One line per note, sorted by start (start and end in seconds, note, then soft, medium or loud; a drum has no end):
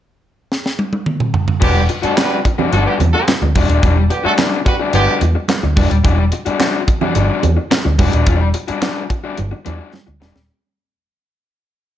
0.52 snare medium
0.66 snare medium
0.79 high tom medium
0.93 high tom medium
1.06 mid tom medium
1.20 mid tom medium
1.34 floor tom loud
1.48 floor tom loud
1.60 1.87 E1 loud
1.60 1.84 D3 loud
1.60 1.80 G3 medium
1.60 1.84 B3 loud
1.60 1.75 D4 medium
1.60 1.74 F#4 medium
1.60 1.84 G4 loud
1.60 kick loud
1.60 crash medium
1.60 muted conga soft
1.75 muted overdriven electric guitar stroke soft
1.89 muted overdriven electric guitar stroke soft
1.89 closed hi-hat medium
2.02 2.15 G3 soft
2.02 2.14 A3 medium
2.02 2.16 D4 medium
2.02 2.17 F#4 medium
2.02 2.14 F#4 medium
2.02 2.14 A4 medium
2.02 muted fingered electric bass stroke soft
2.02 closed hi-hat medium
2.16 2.36 G3 medium
2.16 2.39 G3 medium
2.16 2.36 D4 medium
2.16 2.39 F#4 medium
2.16 2.37 F#4 loud
2.16 2.39 B4 loud
2.16 snare loud
2.16 clap loud
2.16 closed hi-hat medium
2.16 high conga medium
2.45 muted overdriven electric guitar stroke soft
2.45 kick medium
2.45 closed hi-hat medium
2.58 2.71 G3 soft
2.58 2.71 D4 medium
2.58 2.72 F#4 medium
2.58 low conga medium
2.72 2.85 G1 medium
2.72 2.98 G3 medium
2.72 2.84 A3 medium
2.72 2.98 D4 medium
2.72 2.84 F#4 medium
2.72 2.98 F#4 medium
2.72 2.84 A4 medium
2.72 closed hi-hat medium
2.72 muted conga medium
2.86 2.94 D3 medium
2.86 2.95 B3 medium
2.86 2.94 G4 medium
3.00 3.12 E2 loud
3.00 muted overdriven electric guitar stroke medium
3.00 closed hi-hat medium
3.00 muted conga medium
3.00 low conga medium
3.13 3.25 A3 medium
3.13 3.25 F#4 medium
3.13 3.25 A4 loud
3.13 muted overdriven electric guitar stroke medium
3.28 muted overdriven electric guitar stroke soft
3.28 snare medium
3.28 clap medium
3.28 closed hi-hat medium
3.28 high conga medium
3.42 3.54 D2 medium
3.42 muted overdriven electric guitar stroke medium
3.42 high conga soft
3.55 3.68 E1 medium
3.55 3.69 G3 medium
3.55 3.68 D4 medium
3.55 3.68 F#4 medium
3.55 kick medium
3.55 open hi-hat medium
3.55 high conga medium
3.69 3.82 D#1 medium
3.69 3.81 G3 medium
3.69 3.82 D4 medium
3.69 3.83 F#4 medium
3.69 closed hi-hat medium
3.82 4.08 E1 loud
3.82 4.02 G3 medium
3.82 3.96 D4 medium
3.82 3.95 F#4 medium
3.82 kick medium
3.82 closed hi-hat medium
3.82 muted conga soft
3.96 muted overdriven electric guitar stroke medium
4.10 4.22 D3 medium
4.10 4.22 B3 medium
4.10 4.22 G4 medium
4.10 muted overdriven electric guitar stroke soft
4.10 closed hi-hat medium
4.24 4.36 G3 soft
4.24 4.33 A3 medium
4.24 4.37 D4 medium
4.24 4.38 F#4 medium
4.24 4.33 F#4 medium
4.24 4.33 A4 loud
4.24 muted fingered electric bass stroke soft
4.38 4.57 G3 medium
4.38 4.58 D4 loud
4.38 4.58 F#4 medium
4.38 snare loud
4.38 clap loud
4.38 closed hi-hat medium
4.38 high conga medium
4.65 4.75 G3 medium
4.65 4.75 F#4 medium
4.65 4.75 B4 medium
4.65 muted overdriven electric guitar stroke soft
4.65 kick medium
4.65 closed hi-hat medium
4.79 4.92 G3 medium
4.79 4.93 D4 medium
4.79 4.94 F#4 medium
4.93 5.06 G1 medium
4.93 5.16 D3 medium
4.93 5.19 G3 medium
4.93 5.16 B3 loud
4.93 5.19 D4 medium
4.93 5.20 F#4 medium
4.93 5.16 G4 loud
4.93 closed hi-hat medium
4.93 muted conga medium
5.21 5.34 E2 loud
5.21 muted overdriven electric guitar stroke soft
5.21 closed hi-hat medium
5.21 muted conga medium
5.35 muted overdriven electric guitar stroke soft
5.48 muted overdriven electric guitar stroke soft
5.48 snare loud
5.48 clap medium
5.48 closed hi-hat medium
5.48 high conga medium
5.63 5.76 D2 medium
5.63 muted overdriven electric guitar stroke medium
5.63 high conga medium
5.76 5.89 E1 medium
5.76 5.96 G3 medium
5.76 5.90 D4 medium
5.76 5.89 F#4 medium
5.76 kick medium
5.76 open hi-hat medium
5.76 high conga medium
5.90 6.03 D#1 medium
5.90 muted overdriven electric guitar stroke medium
5.90 closed hi-hat medium
6.04 6.29 E1 loud
6.04 6.24 G3 medium
6.04 6.18 D4 medium
6.04 6.17 F#4 medium
6.04 kick loud
6.04 closed hi-hat medium
6.18 muted overdriven electric guitar stroke medium
6.32 muted overdriven electric guitar stroke soft
6.32 closed hi-hat medium
6.46 6.58 G3 soft
6.46 6.58 D4 medium
6.46 6.59 F#4 medium
6.46 muted fingered electric bass stroke soft
6.46 closed hi-hat soft
6.59 6.79 G3 medium
6.59 6.79 D4 loud
6.59 6.80 F#4 loud
6.59 snare loud
6.59 clap medium
6.59 closed hi-hat medium
6.59 high conga medium
6.87 muted overdriven electric guitar stroke soft
6.87 kick medium
6.87 closed hi-hat medium
7.01 7.14 G3 medium
7.01 7.14 D4 medium
7.01 7.15 F#4 medium
7.01 low conga medium
7.15 7.28 G1 medium
7.15 7.41 G3 medium
7.15 7.41 D4 medium
7.15 7.41 F#4 medium
7.15 closed hi-hat medium
7.15 muted conga medium
7.43 7.56 E2 loud
7.43 muted overdriven electric guitar stroke medium
7.43 closed hi-hat medium
7.43 muted conga medium
7.43 low conga medium
7.57 muted overdriven electric guitar stroke soft
7.71 muted overdriven electric guitar stroke soft
7.71 snare loud
7.71 clap loud
7.71 closed hi-hat medium
7.71 high conga medium
7.85 7.98 D2 medium
7.85 muted overdriven electric guitar stroke medium
7.85 high conga soft
7.98 8.11 E1 medium
7.98 8.13 G3 medium
7.98 8.12 D4 medium
7.98 8.11 F#4 medium
7.98 kick medium
7.98 open hi-hat medium
7.98 high conga medium
8.13 8.26 D#1 medium
8.13 8.25 G3 soft
8.13 8.26 D4 medium
8.13 8.27 F#4 medium
8.13 closed hi-hat medium
8.26 8.52 E1 loud
8.26 8.47 G3 loud
8.26 8.40 D4 loud
8.26 8.40 F#4 loud
8.26 kick medium
8.26 closed hi-hat loud
8.26 muted conga soft
8.41 muted overdriven electric guitar stroke soft
8.54 muted overdriven electric guitar stroke soft
8.54 closed hi-hat medium
8.68 8.80 G3 medium
8.68 8.81 D4 medium
8.68 8.82 F#4 medium
8.68 muted fingered electric bass stroke soft
8.68 closed hi-hat medium
8.81 9.01 G3 medium
8.81 9.02 D4 loud
8.81 9.02 F#4 medium
8.81 snare loud
8.81 clap medium
8.81 closed hi-hat medium
8.81 high conga medium
9.10 muted overdriven electric guitar stroke medium
9.10 kick medium
9.10 closed hi-hat medium
9.24 9.37 G3 soft
9.24 9.37 D4 medium
9.24 9.38 F#4 medium
9.37 9.51 G1 medium
9.37 muted overdriven electric guitar stroke soft
9.37 closed hi-hat medium
9.37 muted conga medium
9.51 muted overdriven electric guitar stroke medium
9.65 9.79 E2 medium
9.65 9.79 G3 medium
9.65 9.78 D4 medium
9.65 9.77 F#4 medium
9.65 closed hi-hat medium
9.65 muted conga medium
9.78 9.92 G3 soft
9.78 9.93 D4 medium
9.78 9.92 F#4 medium
9.93 muted overdriven electric guitar stroke soft
9.93 snare medium
9.93 high conga medium
10.07 10.20 D2 medium
10.07 muted overdriven electric guitar stroke medium
10.21 10.34 E1 medium
10.21 10.40 G3 medium
10.21 10.35 D4 medium
10.21 10.34 F#4 medium
10.21 snare loud
10.21 high conga medium
10.36 muted overdriven electric guitar stroke soft
10.36 snare loud